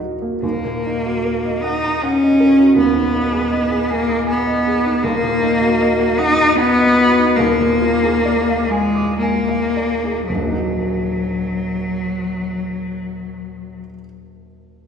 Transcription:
0.00 0.39 D#1 soft
0.00 0.39 D#2 soft
0.00 0.45 A#2 soft
0.00 0.45 D#3 soft
0.00 0.22 A#3 soft
0.00 0.46 D#4 soft
0.00 0.46 F#4 soft
0.00 0.46 A#4 soft
0.22 0.43 A#3 soft
0.42 2.72 D#1 soft
0.42 2.73 D#2 medium
0.42 1.63 A#3 medium
0.65 0.96 A#2 soft
0.86 1.16 D#4 soft
1.06 1.36 F#4 soft
1.25 1.55 A#4 soft
1.45 1.75 D#5 soft
1.61 2.03 D#4 medium
1.61 1.94 F#5 soft
1.84 2.14 A#5 soft
2.01 2.77 C#4 medium
2.01 2.33 F#5 soft
2.22 2.51 D#5 soft
2.40 2.70 A#4 soft
2.58 2.77 F#4 soft
2.75 4.98 D#1 medium
2.75 4.98 D#2 soft
2.75 3.91 B3 medium
2.95 3.25 D#3 soft
3.14 3.44 D#4 soft
3.32 3.63 G#4 soft
3.51 3.81 D#5 soft
3.71 4.01 G#4 soft
3.90 4.27 A#3 loud
3.90 4.20 G#5 medium
4.09 4.39 D#6 medium
4.27 5.05 B3 loud
4.27 4.57 G#5 medium
4.47 4.77 D#5 medium
4.66 4.96 G#4 medium
4.85 5.03 D#4 medium
5.03 7.33 D#1 medium
5.03 7.33 D#2 medium
5.03 6.19 A#3 loud
5.23 5.53 A#2 medium
5.42 5.72 D#4 medium
5.62 5.91 F#4 medium
5.80 6.10 D#5 medium
6.00 6.30 F#4 medium
6.18 6.57 D#4 loud
6.18 6.49 F#5 medium
6.38 6.69 D#6 medium
6.56 7.37 B3 loud
6.56 6.89 F#5 medium
6.79 7.09 D#5 medium
6.98 7.29 F#4 medium
7.19 7.38 D#4 medium
7.36 10.26 D#1 medium
7.36 8.70 A#3 loud
7.40 10.27 D#2 medium
7.60 7.93 A#2 medium
7.81 8.15 F4 medium
8.03 8.38 G#4 medium
8.25 8.61 D5 medium
8.49 8.85 F5 medium
8.69 9.18 G#3 loud
8.69 9.10 G#5 medium
8.95 9.36 D6 medium
9.19 10.26 A#3 medium
9.19 9.64 G#5 medium
9.48 9.93 F5 soft
9.77 10.19 D5 soft
10.04 10.29 G#4 soft
10.27 13.80 D#1 medium
10.27 13.79 F#3 medium
10.34 13.85 A#1 soft
10.38 13.89 F#3 soft
10.43 13.94 A#3 soft
10.48 13.99 D#4 soft
10.53 14.04 F#4 soft

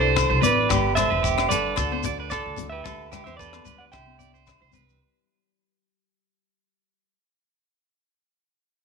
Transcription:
0.00 0.19 C2 medium
0.00 0.44 C3 medium
0.00 0.43 D3 medium
0.00 0.17 G3 medium
0.00 0.45 D4 medium
0.00 0.71 E4 medium
0.00 0.41 A4 medium
0.00 0.39 C5 medium
0.00 0.27 C5 medium
0.16 0.71 G3 medium
0.16 kick medium
0.16 cross-stick medium
0.16 low agogo medium
0.16 shekere medium
0.30 0.41 C2 medium
0.30 0.41 C5 medium
0.41 0.67 E3 medium
0.41 0.72 D4 medium
0.41 0.67 B4 medium
0.41 0.95 D5 medium
0.41 closed hi-hat soft
0.41 high conga medium
0.41 low conga medium
0.41 shekere medium
0.46 0.94 B4 medium
0.69 1.04 G1 medium
0.69 1.74 G2 medium
0.69 1.49 D3 medium
0.69 1.22 B3 medium
0.69 1.50 D4 medium
0.69 0.95 G4 medium
0.69 0.96 G4 medium
0.69 kick medium
0.69 cross-stick medium
0.69 low conga medium
0.69 low agogo medium
0.69 shekere medium
0.95 1.09 A4 medium
0.95 1.48 C5 medium
0.95 1.46 E5 medium
0.95 cross-stick medium
0.95 closed hi-hat soft
0.95 low conga medium
0.95 low agogo medium
0.95 shekere medium
1.10 1.44 E1 medium
1.10 1.22 B4 medium
1.23 1.74 B3 medium
1.23 1.49 G4 medium
1.23 kick medium
1.23 shekere medium
1.38 cross-stick medium
1.38 low agogo medium
1.49 1.74 G1 medium
1.49 1.76 D3 medium
1.49 2.31 D4 medium
1.49 2.28 A4 medium
1.49 1.76 B4 medium
1.49 2.29 D5 medium
1.49 closed hi-hat soft
1.49 low conga medium
1.49 shekere medium
1.76 2.35 D2 medium
1.76 2.85 D3 medium
1.76 2.04 F#4 medium
1.76 1.90 A4 medium
1.76 kick medium
1.76 cross-stick medium
1.76 low agogo medium
1.76 shekere medium
1.92 2.04 C5 medium
1.92 high conga medium
2.04 2.57 F#4 medium
2.04 2.18 D5 medium
2.04 kick medium
2.04 closed hi-hat soft
2.04 high conga medium
2.04 shekere medium
2.20 2.31 B4 medium
2.30 2.57 A4 medium
2.30 2.70 A4 medium
2.30 2.69 D5 medium
2.30 kick medium
2.30 cross-stick medium
2.30 low agogo medium
2.30 shekere medium
2.46 2.56 D2 medium
2.57 2.81 D2 medium
2.57 2.82 A3 medium
2.57 2.82 F#4 medium
2.57 closed hi-hat soft
2.57 high conga medium
2.57 low conga medium
2.57 shekere medium
2.70 2.84 G4 medium
2.70 3.22 B4 medium
2.70 3.21 E5 medium
2.84 3.20 D2 medium
2.84 4.72 D3 medium
2.84 3.12 G4 medium
2.84 3.10 A4 medium
2.84 kick medium
2.84 cross-stick medium
2.84 low conga medium
2.84 low agogo medium
2.84 shekere medium
3.12 3.25 G4 medium
3.12 3.65 G4 medium
3.12 cross-stick medium
3.12 closed hi-hat soft
3.12 low conga medium
3.12 low agogo medium
3.12 shekere medium
3.24 3.60 E2 medium
3.24 3.38 G4 medium
3.24 3.38 C5 medium
3.24 3.36 E5 medium
3.24 high conga medium
3.24 shekere soft
3.37 3.94 B3 medium
3.37 3.65 A4 medium
3.37 3.77 B4 medium
3.37 3.76 D5 medium
3.37 kick soft
3.37 shekere medium
3.53 cross-stick medium
3.53 high conga medium
3.53 low agogo medium
3.65 3.89 D2 medium
3.65 4.46 G3 medium
3.65 3.90 G4 medium
3.65 3.91 B4 medium
3.65 closed hi-hat soft
3.65 low conga medium
3.65 shekere medium
3.78 3.85 D5 medium
3.78 3.83 F#5 medium
3.92 4.51 C2 medium
3.92 4.75 C3 medium
3.92 4.72 D4 medium
3.92 4.18 C5 medium
3.92 4.70 E5 medium
3.92 4.69 G5 medium
3.92 kick medium
3.92 cross-stick medium
3.92 low agogo medium
3.92 shekere medium
4.06 high conga medium
4.19 4.33 D5 medium
4.19 closed hi-hat soft
4.19 high conga medium
4.19 shekere medium
4.34 4.60 C5 medium
4.34 shekere soft
4.47 7.17 G3 medium
4.47 kick medium
4.47 cross-stick medium
4.47 low agogo medium
4.47 shekere medium
4.62 4.72 C2 medium
4.62 4.74 C5 medium
4.71 4.97 C2 medium
4.71 4.97 E3 soft
4.71 4.97 D4 soft
4.71 5.00 B4 medium
4.71 closed hi-hat soft
4.71 high conga medium
4.71 low conga medium
4.71 shekere medium
4.89 shekere soft

